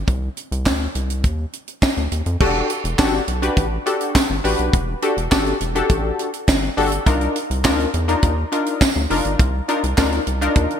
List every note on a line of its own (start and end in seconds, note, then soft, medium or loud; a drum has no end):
0.08 0.29 C2 loud
0.08 kick loud
0.08 closed hi-hat medium
0.37 closed hi-hat medium
0.52 0.68 C2 loud
0.52 closed hi-hat medium
0.65 0.88 D2 medium
0.65 kick loud
0.65 snare medium
0.65 clap medium
0.65 tambourine medium
0.95 1.26 C2 medium
0.95 closed hi-hat medium
1.10 closed hi-hat medium
1.24 1.46 D#2 medium
1.24 kick loud
1.24 closed hi-hat medium
1.53 closed hi-hat medium
1.68 closed hi-hat soft
1.82 kick loud
1.82 snare loud
1.82 clap medium
1.82 tambourine medium
1.97 2.08 D2 medium
1.97 closed hi-hat soft
2.12 2.22 D#2 medium
2.12 closed hi-hat medium
2.26 2.37 F2 loud
2.26 closed hi-hat soft
2.40 2.62 E1 loud
2.40 2.71 D4 medium
2.40 2.71 F#4 medium
2.40 2.71 G4 medium
2.40 2.72 A4 loud
2.40 kick loud
2.40 crash loud
2.70 closed hi-hat medium
2.84 2.95 E1 loud
2.84 closed hi-hat medium
2.98 3.20 G1 medium
2.98 3.22 D4 loud
2.98 3.22 F#4 medium
2.98 3.22 G4 medium
2.98 3.22 A4 loud
2.98 kick loud
2.98 snare loud
2.98 clap medium
2.98 closed hi-hat medium
2.98 tambourine medium
3.28 3.49 B1 medium
3.28 closed hi-hat medium
3.42 3.65 D4 loud
3.42 3.65 F#4 medium
3.42 3.66 G4 medium
3.42 3.66 B4 loud
3.42 closed hi-hat medium
3.57 3.79 A1 loud
3.57 kick loud
3.57 closed hi-hat medium
3.86 4.17 D4 medium
3.86 4.17 F#4 medium
3.86 4.17 G4 medium
3.86 4.17 A4 loud
3.86 closed hi-hat medium
4.01 closed hi-hat medium
4.15 kick loud
4.15 snare loud
4.15 clap medium
4.15 closed hi-hat medium
4.15 tambourine medium
4.30 4.41 G1 medium
4.44 4.55 A1 medium
4.44 4.75 D4 medium
4.44 4.75 F#4 medium
4.44 4.75 G4 medium
4.44 4.75 B4 loud
4.44 open hi-hat medium
4.59 4.70 B1 medium
4.59 closed hi-hat soft
4.73 4.95 E1 loud
4.73 kick loud
4.73 closed hi-hat loud
5.02 5.16 D4 medium
5.02 5.16 F#4 medium
5.02 5.17 G4 medium
5.02 5.17 A4 loud
5.02 closed hi-hat medium
5.17 5.28 E1 loud
5.17 closed hi-hat medium
5.31 5.53 G1 medium
5.31 5.55 D4 medium
5.31 5.55 F#4 medium
5.31 5.55 G4 medium
5.31 5.55 A4 loud
5.31 kick loud
5.31 snare loud
5.31 clap medium
5.31 closed hi-hat medium
5.31 tambourine medium
5.46 closed hi-hat soft
5.61 5.82 E1 medium
5.61 closed hi-hat medium
5.75 6.29 D4 medium
5.75 6.29 F#4 medium
5.75 6.29 G4 medium
5.75 6.29 A4 loud
5.75 closed hi-hat medium
5.89 6.11 A1 loud
5.89 kick loud
5.89 closed hi-hat medium
6.19 closed hi-hat medium
6.34 closed hi-hat medium
6.48 6.70 G1 loud
6.48 kick loud
6.48 snare loud
6.48 clap medium
6.48 closed hi-hat medium
6.48 tambourine medium
6.77 6.99 G1 medium
6.77 6.91 D4 loud
6.77 6.91 F#4 medium
6.77 6.92 G4 medium
6.77 6.92 A4 loud
6.77 open hi-hat medium
6.92 closed hi-hat medium
7.06 7.28 C2 loud
7.06 7.37 D4 loud
7.06 7.37 D#4 medium
7.06 7.37 F4 medium
7.06 7.37 A#4 loud
7.06 kick loud
7.06 closed hi-hat loud
7.21 closed hi-hat soft
7.36 closed hi-hat medium
7.50 7.66 C2 loud
7.50 closed hi-hat medium
7.64 7.86 D2 medium
7.64 7.88 D4 loud
7.64 7.88 D#4 medium
7.64 7.88 F4 medium
7.64 7.88 A#4 loud
7.64 kick loud
7.64 snare loud
7.64 clap medium
7.64 closed hi-hat medium
7.64 tambourine medium
7.79 closed hi-hat soft
7.94 8.15 E2 loud
7.94 closed hi-hat medium
8.08 8.31 D4 loud
8.08 8.31 D#4 medium
8.08 8.32 F4 medium
8.08 8.32 A#4 loud
8.08 closed hi-hat medium
8.23 8.45 D#2 medium
8.23 kick loud
8.23 closed hi-hat medium
8.52 8.83 D4 medium
8.52 8.83 D#4 medium
8.52 8.83 F4 medium
8.52 8.83 A#4 medium
8.52 closed hi-hat medium
8.66 closed hi-hat medium
8.81 kick loud
8.81 snare loud
8.81 clap medium
8.81 closed hi-hat medium
8.81 tambourine loud
8.96 9.07 D2 medium
9.10 9.21 F1 medium
9.10 9.41 D4 loud
9.10 9.41 D#4 medium
9.10 9.41 F4 medium
9.10 9.41 A#4 loud
9.10 open hi-hat medium
9.25 9.36 G1 medium
9.25 closed hi-hat soft
9.39 9.61 C2 loud
9.39 kick loud
9.39 closed hi-hat loud
9.68 9.82 D4 loud
9.68 9.83 D#4 medium
9.68 9.83 F4 medium
9.68 9.83 A#4 loud
9.68 closed hi-hat medium
9.84 9.94 C2 loud
9.84 closed hi-hat medium
9.97 10.19 D2 medium
9.97 10.21 D4 medium
9.97 10.21 D#4 medium
9.97 10.21 F4 medium
9.97 10.21 A#4 loud
9.97 kick loud
9.97 snare loud
9.97 clap medium
9.97 closed hi-hat medium
9.97 tambourine medium
10.12 closed hi-hat soft
10.27 10.49 C2 medium
10.27 closed hi-hat medium
10.41 10.80 D4 loud
10.41 10.80 D#4 medium
10.41 10.80 F4 medium
10.41 10.80 A#4 loud
10.41 closed hi-hat medium
10.56 10.67 D#2 medium
10.56 kick loud
10.56 closed hi-hat medium
10.70 closed hi-hat soft